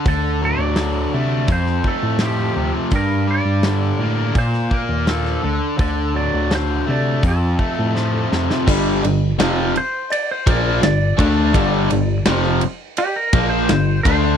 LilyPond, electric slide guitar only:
\new Staff \with { instrumentName = "Electric slide guitar" } { \time 4/4 \key g \minor \tempo 4 = 84 a'8 d''4. c''8 a'8 g'8. r16 | bes'8 d''4. c''8 bes'8 a'8. r16 | a'8 d''8 c''8 d''8 a'4. r8 | r4. c''8 d''16 c''16 d''8 d''4~ |
d''4 r4 g'16 bes'8 c''8. c''8 | }